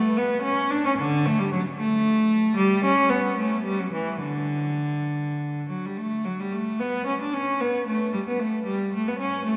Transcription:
0.00 0.16 A3 medium
0.17 0.43 B3 medium
0.42 0.70 C#4 medium
0.70 0.85 D4 medium
0.86 0.91 C#4 medium
0.98 1.26 D3 medium
1.26 1.40 A3 medium
1.39 1.53 G3 medium
1.52 1.60 F#3 medium
1.78 2.55 A3 loud
2.56 2.83 G3 loud
2.85 3.11 C#4 medium
3.10 3.38 B3 medium
3.38 3.65 A3 medium
3.65 3.79 G3 medium
3.79 3.94 F#3 medium
3.93 4.22 E3 medium
4.22 5.66 D3 medium
5.69 5.83 F#3 medium
5.86 5.99 G3 medium
5.97 6.25 A3 medium
6.25 6.39 F#3 medium
6.40 6.53 G3 medium
6.52 6.79 A3 medium
6.79 7.06 B3 medium
7.06 7.19 C#4 medium
7.21 7.33 D4 medium
7.33 7.60 C#4 medium
7.60 7.87 B3 medium
7.87 8.13 A3 medium
8.13 8.18 G3 medium
8.28 8.40 B3 medium
8.39 8.66 A3 medium
8.66 8.92 G3 medium
8.93 9.06 A3 medium
9.08 9.20 B3 medium
9.19 9.44 C#4 medium
9.45 9.57 A3 medium

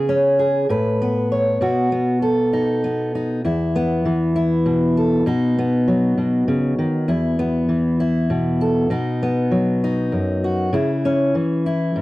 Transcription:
0.00 0.66 C#3 medium
0.00 0.38 G#4 medium
0.09 0.66 C#4 medium
0.39 0.66 G#4 medium
0.69 1.57 A2 medium
0.69 1.31 B4 medium
1.02 1.92 B3 medium
1.32 1.58 C#5 medium
1.61 3.44 B2 medium
1.61 2.22 F#4 medium
1.92 2.83 B3 medium
2.22 3.40 A4 medium
2.53 3.14 D#4 medium
2.84 3.40 B3 medium
3.15 3.41 D#4 medium
3.44 5.27 E2 medium
3.44 4.34 E4 medium
3.76 5.58 B3 medium
4.05 5.27 E3 medium
4.36 5.23 E4 medium
4.66 5.25 B2 medium
4.97 5.23 A4 medium
5.26 6.16 B2 medium
5.26 7.05 D#4 medium
5.59 7.39 B3 medium
5.88 7.05 F#3 medium
6.18 6.47 B2 medium
6.48 6.78 C#3 medium
6.79 7.09 D#3 medium
7.08 8.91 E2 medium
7.08 7.99 E4 medium
7.39 8.87 B3 medium
7.69 8.91 E3 medium
8.00 8.87 E4 medium
8.30 8.89 B2 medium
8.61 8.88 A4 medium
8.90 10.12 B2 medium
8.90 9.82 D#4 medium
9.23 10.70 B3 medium
9.51 10.69 F#3 medium
9.84 10.70 D#4 medium
10.12 10.69 F#2 medium
10.44 10.74 F#4 medium
10.73 11.34 C#3 medium
10.73 11.66 E4 medium
11.05 12.02 C#4 medium
11.35 12.02 E3 medium
11.66 12.02 E4 medium
11.96 12.02 G#2 medium

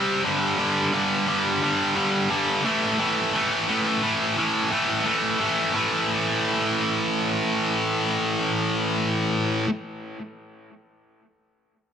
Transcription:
0.00 0.22 C3 medium
0.00 0.22 G3 medium
0.00 0.23 C4 medium
0.24 0.57 G2 medium
0.24 0.57 D3 medium
0.24 0.58 G3 medium
0.58 0.92 G2 medium
0.58 0.93 D3 medium
0.58 0.93 G3 medium
0.93 1.26 G2 loud
0.93 1.27 D3 medium
0.93 1.27 G3 loud
1.27 1.61 G2 medium
1.27 1.62 D3 medium
1.27 1.62 G3 medium
1.62 1.95 G2 medium
1.62 1.95 D3 medium
1.62 1.96 G3 loud
1.96 2.29 G2 medium
1.96 2.29 D3 medium
1.96 2.30 G3 medium
2.30 2.62 G2 medium
2.30 2.63 D3 medium
2.30 2.63 G3 medium
2.65 2.98 A2 medium
2.65 2.98 E3 medium
2.65 2.99 A3 medium
2.99 3.32 A2 medium
2.99 3.33 E3 medium
2.99 3.34 A3 medium
3.34 3.67 A2 medium
3.34 3.68 E3 medium
3.34 3.68 A3 medium
3.68 4.02 A2 medium
3.68 4.02 E3 medium
3.68 4.03 A3 loud
4.03 4.36 A2 medium
4.03 4.37 E3 medium
4.03 4.37 A3 medium
4.37 4.70 A2 medium
4.37 4.71 E3 medium
4.37 4.72 A3 medium
4.71 5.04 A2 medium
4.71 5.05 E3 medium
4.71 5.05 A3 medium
5.05 5.38 A2 medium
5.05 5.39 E3 medium
5.05 5.39 A3 medium
5.39 5.72 A2 medium
5.39 5.72 E3 medium
5.39 5.72 A3 medium
5.73 9.66 A2 medium
5.73 9.68 E3 medium
5.73 9.69 A3 medium

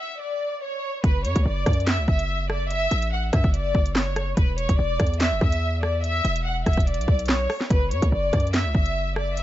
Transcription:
0.00 0.16 E5 medium
0.21 0.60 D5 medium
0.62 1.01 C#5 medium
1.04 1.26 F#1 loud
1.04 1.21 B4 medium
1.04 kick loud
1.04 closed hi-hat medium
1.25 1.35 F#2 loud
1.25 1.42 C#5 medium
1.25 closed hi-hat medium
1.36 1.45 C#2 loud
1.36 kick medium
1.36 closed hi-hat medium
1.46 1.66 F#1 loud
1.46 1.85 D5 loud
1.66 2.00 F#2 loud
1.66 kick loud
1.66 cross-stick medium
1.66 closed hi-hat medium
1.73 closed hi-hat medium
1.80 closed hi-hat soft
1.87 2.04 E5 medium
1.87 snare loud
1.87 clap medium
1.87 closed hi-hat medium
1.98 2.08 C#2 loud
2.08 2.88 F#1 loud
2.08 2.47 E5 medium
2.08 kick medium
2.19 closed hi-hat medium
2.50 2.67 D5 medium
2.50 cross-stick loud
2.71 3.10 E5 loud
2.71 closed hi-hat medium
2.91 3.31 A1 loud
2.91 closed hi-hat medium
3.02 closed hi-hat medium
3.12 3.29 F#5 medium
3.33 3.44 F#2 loud
3.33 3.50 E5 medium
3.33 kick loud
3.33 cross-stick medium
3.33 closed hi-hat medium
3.44 3.73 F#1 loud
3.44 kick medium
3.54 3.93 D5 medium
3.54 closed hi-hat medium
3.75 4.35 F#1 loud
3.75 kick medium
3.86 closed hi-hat medium
3.95 4.35 C#5 medium
3.95 snare loud
3.95 clap loud
4.16 cross-stick loud
4.16 closed hi-hat medium
4.37 4.68 E1 loud
4.37 4.54 B4 medium
4.37 kick loud
4.37 closed hi-hat medium
4.58 4.75 C#5 medium
4.58 closed hi-hat medium
4.69 4.78 E1 loud
4.69 kick medium
4.69 closed hi-hat medium
4.79 4.99 E1 loud
4.79 5.18 D5 medium
5.00 5.33 E2 loud
5.00 kick loud
5.00 cross-stick medium
5.00 closed hi-hat medium
5.07 closed hi-hat medium
5.14 closed hi-hat soft
5.20 5.37 E5 medium
5.20 snare loud
5.20 clap loud
5.20 closed hi-hat medium
5.32 5.41 F#1 loud
5.41 6.21 E2 loud
5.41 5.81 E5 medium
5.41 kick medium
5.52 closed hi-hat medium
5.83 6.00 D5 medium
5.83 cross-stick loud
6.04 6.43 E5 loud
6.04 closed hi-hat medium
6.25 6.65 E1 loud
6.25 closed hi-hat medium
6.36 closed hi-hat medium
6.45 6.62 F#5 medium
6.66 6.77 E1 loud
6.66 6.83 E5 medium
6.66 kick loud
6.66 cross-stick medium
6.66 closed hi-hat medium
6.73 closed hi-hat medium
6.77 7.00 E1 loud
6.77 kick medium
6.77 closed hi-hat medium
6.87 7.26 D5 medium
6.87 closed hi-hat medium
6.94 closed hi-hat medium
6.98 7.08 B1 loud
6.98 closed hi-hat medium
7.08 7.48 B1 loud
7.08 kick medium
7.19 closed hi-hat medium
7.26 7.68 C#5 medium
7.26 snare loud
7.26 clap loud
7.26 closed hi-hat medium
7.33 closed hi-hat medium
7.50 cross-stick loud
7.50 open hi-hat medium
7.61 snare medium
7.70 7.93 F#1 loud
7.70 7.87 B4 medium
7.70 kick loud
7.70 closed hi-hat medium
7.91 8.02 F#2 loud
7.91 8.08 C#5 medium
7.91 closed hi-hat medium
8.02 8.12 C#2 loud
8.02 kick medium
8.02 closed hi-hat medium
8.12 8.32 F#1 loud
8.12 8.51 D5 loud
8.33 8.66 F#2 loud
8.33 kick loud
8.33 cross-stick medium
8.33 closed hi-hat medium
8.40 closed hi-hat medium
8.47 closed hi-hat soft
8.54 8.71 E5 medium
8.54 snare loud
8.54 clap loud
8.54 closed hi-hat medium
8.65 8.74 C#2 loud
8.75 9.43 F#1 loud
8.75 9.14 E5 medium
8.75 kick medium
8.86 closed hi-hat medium
9.16 9.33 D5 medium
9.16 cross-stick loud
9.37 9.43 E5 loud
9.37 closed hi-hat medium

